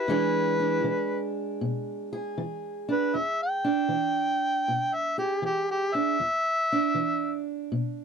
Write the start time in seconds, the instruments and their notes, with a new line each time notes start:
Already playing: harmonica B4
0.08 steel-string acoustic guitar E2 E3 G#3 D4 G#4
0.60 steel-string acoustic guitar D4
0.84 steel-string acoustic guitar E3
1.61 steel-string acoustic guitar B2
2.13 steel-string acoustic guitar G#4
2.38 steel-string acoustic guitar E3
2.89 steel-string acoustic guitar D4, harmonica B4
3.14 steel-string acoustic guitar E2, harmonica E5
3.43 harmonica G5
3.64 steel-string acoustic guitar D4
3.89 steel-string acoustic guitar E3
4.68 steel-string acoustic guitar B2
4.94 harmonica E5
5.18 harmonica G4, steel-string acoustic guitar G#4
5.42 steel-string acoustic guitar E3, harmonica G4
5.71 harmonica G4
5.95 steel-string acoustic guitar D4, harmonica E5
6.20 steel-string acoustic guitar E2
6.72 steel-string acoustic guitar D4
6.95 steel-string acoustic guitar E3
7.72 steel-string acoustic guitar B2